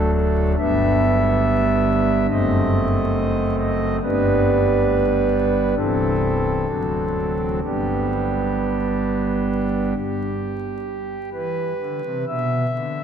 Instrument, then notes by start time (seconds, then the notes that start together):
pipe organ
Already playing: D1 D2 F#3 A3 D4 A4
0.14 A4
0.58 G1 G2 G3 B3 D4 E5
2.30 F#1 F#2 A3 C4 D#5
3.59 D#5
4.03 G1 G2 G3 B3 D4 B4
5.77 C1 C2 E3 C4 E4 A4
6.68 D1 D2 F#3 C4 D4
7.64 G1 G2 G3 B3 D4 G4
9.96 G4
11.32 E3 B4
11.80 D3
12.04 C3
12.27 B2 E5
12.73 D3